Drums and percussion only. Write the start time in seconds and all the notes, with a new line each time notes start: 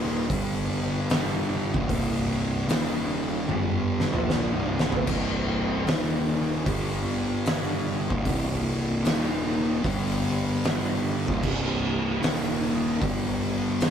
0.30 kick, open hi-hat
1.10 snare, open hi-hat
1.74 kick
1.89 kick, open hi-hat
2.69 snare, open hi-hat
3.49 high tom
4.00 snare
4.13 mid tom
4.30 snare
4.79 snare
4.92 floor tom
5.07 kick, crash
5.87 snare, open hi-hat
6.66 kick, open hi-hat
7.46 snare, open hi-hat
8.10 kick
8.25 kick, open hi-hat
9.05 snare, open hi-hat
9.84 kick, open hi-hat
10.64 snare, open hi-hat
11.28 kick, snare
11.43 kick, crash
12.23 snare, open hi-hat
13.02 kick, open hi-hat
13.81 snare, open hi-hat